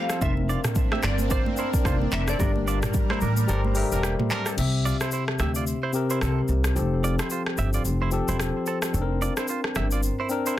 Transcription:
Already playing: F3 G3 A3 C4 F4 G4 A4 F5
0.10 C4 A4, cross-stick, shaker
0.20 F1 A#3 C4 D4 F4 A#4 C5 E5, kick, low conga, shaker
0.37 high conga
0.49 F4 D5, shaker
0.64 cross-stick, mid tom, shaker
0.75 kick, low conga, shaker
0.92 G4 E5, cross-stick, high conga
1.03 G1 F4 D5, cross-stick, clap, low conga, shaker
1.18 high conga, shaker
1.29 C4 D4 F4 A#4 C5 D5, kick, shaker
1.46 high conga
1.56 C4 D4 E4 A#4 C5, shaker
1.74 kick, shaker
1.85 F1 F4 C5, kick, cross-stick, shaker
2.02 high conga
2.12 F1 D4 A#4 E5, clap, high conga, shaker
2.28 C4 A4 D5, cross-stick, shaker
2.38 G1 G3 D4 G4 A4 A#4 D5, kick, low conga, shaker
2.46 A#4
2.56 high conga
2.68 F4 D5, shaker
2.83 cross-stick, mid tom, shaker
2.94 kick, low conga, shaker
3.10 E4 C5, cross-stick, high conga
3.21 A1 D4 A#4, low conga, shaker
3.37 high conga, shaker
3.47 G1 G3 D4 G4 A4 A#4 C5, shaker
3.65 high conga
3.75 G3 D4 G4 A4 A#4 E5, open hi-hat, shaker
3.83 A#4
3.92 E1 G3 D4 A#4, shaker
4.03 A#3 G4, cross-stick, shaker
4.19 mid tom, high conga
4.30 G3 C4 D4 A4 A#4, clap, high conga, low conga, shaker
4.46 C4 A4, cross-stick, shaker
4.57 C2 C3 C4 G4 E5, crash, shaker
4.85 F4 D5, shaker
5.01 E4 C5, cross-stick, shaker
5.11 E4 C5, shaker
5.28 cross-stick
5.39 D2 G4 E5, cross-stick, shaker
5.55 F4 D5, shaker
5.67 shaker
5.83 E4 C5
5.93 C3 C4 G4 A#4, shaker
6.10 E4 C5, shaker
6.21 C2 C4 A4, cross-stick, shaker
6.48 C2, shaker
6.64 cross-stick, shaker
6.75 F1 F3 C4 G4 A4, shaker
7.04 F4 D5, shaker
7.19 E4 C5, cross-stick, shaker
7.30 F4 C5, shaker
7.46 cross-stick
7.57 G1 G4 E5, shaker
7.73 F4 D5, shaker
7.85 F1, shaker
8.02 E4 C5
8.11 F3 C4 G4 A4, shaker
8.28 E1 E4 C5, shaker
8.40 cross-stick, shaker
8.66 C4 A4, shaker
8.82 cross-stick, shaker
8.93 F1 C4 D4 A4, shaker
9.02 A#4
9.22 F4 D5, shaker
9.37 E4 C5, cross-stick, shaker
9.48 F4 C5, shaker
9.64 cross-stick
9.75 G1 G4 E5, cross-stick, shaker
9.91 F4 D5, shaker
10.03 shaker
10.20 E4 C5
10.29 C4 D4 A#4, shaker
10.46 E4 C5, shaker

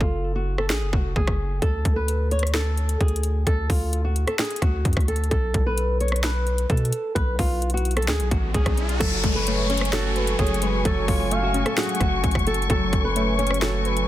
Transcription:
0.01 F#1 F4, kick
0.35 F#4
0.58 A4, cross-stick
0.70 A1 G#4, finger snap, snare
0.81 F#1
0.93 F1 F#4, kick
1.16 F#1 G#4, kick
1.27 F#1, kick, cross-stick
1.62 D2 A4, kick, closed hi-hat
1.85 D2, kick, closed hi-hat
1.96 B4
2.08 closed hi-hat
2.31 C#5, closed hi-hat
2.39 cross-stick, closed hi-hat
2.47 closed hi-hat
2.54 A4, finger snap, snare, closed hi-hat
2.77 closed hi-hat
2.89 closed hi-hat
3.01 D2 G#4, kick, closed hi-hat
3.08 closed hi-hat
3.16 closed hi-hat
3.23 closed hi-hat
3.47 D2 A4, kick, closed hi-hat
3.70 D2 F4, kick, open hi-hat
3.93 closed hi-hat
4.05 F#4
4.16 closed hi-hat
4.27 A4, cross-stick, closed hi-hat
4.39 G#4, finger snap, snare, closed hi-hat
4.45 closed hi-hat
4.50 closed hi-hat
4.56 closed hi-hat
4.62 D2 F#4, kick, cross-stick, closed hi-hat
4.85 F#2, kick, closed hi-hat
4.93 D2, kick, cross-stick, closed hi-hat
5.01 closed hi-hat
5.08 A4, closed hi-hat
5.16 closed hi-hat
5.24 closed hi-hat
5.31 B1 A4, kick, closed hi-hat
5.54 B1, kick, closed hi-hat
5.66 B4
5.78 closed hi-hat
6.01 C#5, closed hi-hat
6.08 cross-stick, closed hi-hat
6.16 closed hi-hat
6.24 B4, finger snap, snare, closed hi-hat
6.47 closed hi-hat
6.58 closed hi-hat
6.70 B2 A4, kick, closed hi-hat
6.77 closed hi-hat
6.85 closed hi-hat
6.92 closed hi-hat
7.15 B1 B4, kick, closed hi-hat, riser
7.39 B1 F4, kick, open hi-hat
7.62 closed hi-hat
7.70 closed hi-hat
7.74 F#4, closed hi-hat
7.85 closed hi-hat
7.91 closed hi-hat
7.97 A4, cross-stick, closed hi-hat
8.02 closed hi-hat
8.08 D2 G#4, finger snap, snare
8.20 B1, closed hi-hat
8.31 A1 F#4, kick, closed hi-hat
8.54 B1 G#4, kick, closed hi-hat
8.66 B1, kick, cross-stick, closed hi-hat
8.78 closed hi-hat
8.89 closed hi-hat
9.00 F#1 F#3 A4 G#5 C#6, kick, closed hi-hat, crash, downlifter
9.24 F#1 G#3, kick, closed hi-hat
9.35 B4
9.47 A3 C#5, closed hi-hat
9.70 C#4 C#5, closed hi-hat
9.77 cross-stick, closed hi-hat
9.85 closed hi-hat
9.93 F#4 A4, finger snap, snare, closed hi-hat
10.16 B4, closed hi-hat
10.27 closed hi-hat
10.39 F#1 G#4 C#5, kick, closed hi-hat
10.47 closed hi-hat
10.54 closed hi-hat
10.62 G#3 B4, closed hi-hat
10.85 F#1 F#3 A4 C#5, kick, closed hi-hat
11.08 F#1 G#3 F4, kick, open hi-hat
11.31 A3 F5, closed hi-hat
11.43 F#4
11.54 C#4, closed hi-hat
11.65 A4, cross-stick, closed hi-hat
11.77 F#4 G#4 F#5, finger snap, snare, closed hi-hat
11.83 closed hi-hat
11.89 closed hi-hat
11.95 closed hi-hat
12.00 F#1 F#4, kick, cross-stick, closed hi-hat
12.24 A1, kick, closed hi-hat
12.31 F#1, kick, cross-stick, closed hi-hat
12.39 closed hi-hat
12.47 A4, closed hi-hat
12.54 closed hi-hat
12.62 closed hi-hat
12.70 F#1 F#3 A4 G#5, kick, closed hi-hat
12.93 F#1, kick, closed hi-hat
13.04 B4
13.16 A3 C#5, closed hi-hat
13.38 C#4 C#5, closed hi-hat
13.47 cross-stick, closed hi-hat
13.54 closed hi-hat
13.62 F#4 A4, finger snap, snare, closed hi-hat
13.85 B4, closed hi-hat
13.97 closed hi-hat

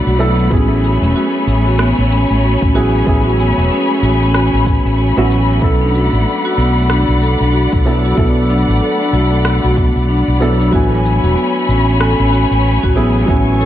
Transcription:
Already playing: F#3 A3 B3 E4 A4 D5 F#5 B5
0.07 B1 F#4
0.18 F#3 B3 E4 A4, cabasa
0.39 cabasa
0.49 A1 F#3 B3 C#4 E4 G#4 C#5 G#5, kick, cabasa
0.84 F#4, cabasa
1.02 E1 C#4, cabasa
1.16 F#4, cabasa
1.47 A1, cabasa
1.67 F#4, cabasa
1.79 B3, cross-stick, cabasa
1.99 A1
2.12 C#4, cabasa
2.30 A1, cabasa
2.43 F#4, cabasa
2.62 A1 C#4, kick
2.74 F#3 B3 E4 F#4 G#4, cabasa
2.95 cabasa
3.05 A1 F#3 B3 E4 G#4, kick, cabasa
3.26 F#4
3.39 B3, cabasa
3.58 E1, cabasa
3.71 C#4, cabasa
4.03 A1 F#4, cabasa
4.23 C#4, cabasa
4.34 F#4, cross-stick, cabasa
4.53 A1
4.66 kick, cabasa
4.85 A1 C#4, cabasa
4.98 F#4, cabasa
5.16 A1 F#3 B3 C#4 E4 F#4
5.31 F#4, cabasa
5.50 cabasa
5.60 B1 F#3 B3 E4 A4 D5 F#5, kick, cabasa
5.64 A4
5.81 D4
5.94 F#4, cabasa
6.13 A1, cabasa
6.27 cabasa
6.45 F#4
6.58 B1 B3, cabasa
6.78 cabasa
6.90 D4, cross-stick, cabasa
7.09 B1
7.22 A4, cabasa
7.41 B1 D4, cabasa
7.54 F#4, cabasa
7.73 B1, kick
7.85 F#3 B3 E4 A4, cabasa
8.05 F#4, cabasa
8.15 B1 F#3 B3 E4, kick, cabasa
8.19 A4
8.49 D4, cabasa
8.68 A1, cabasa
8.82 A4, cabasa
9.01 D4
9.13 B1 F#4, cabasa
9.33 cabasa
9.45 cross-stick, cabasa
9.64 B1 F#4
9.77 B3, kick, cabasa
9.96 B1, cabasa
10.09 D4, cabasa
10.28 B1
10.40 F#3 B3 E4 A4, cabasa
10.60 D4, cabasa
10.71 A1 F#3 A3 B3 E4 F#4 C#5 G#5 B5, kick, cabasa
10.75 G#5
11.05 cabasa
11.24 E1 F#4, cabasa
11.36 B3, cabasa
11.69 A1 C#4, cabasa
11.89 cabasa
12.00 A4, cross-stick, cabasa
12.20 A1 C#4
12.33 F#4, cabasa
12.51 A1, cabasa
12.65 cabasa
12.83 A1 F#4, kick
12.95 F#3 B3 E4 G#4, cabasa
13.17 cabasa
13.26 A1 F#3 B3 C#4 E4 C#6, kick, cabasa
13.30 G#5
13.60 A4, cabasa

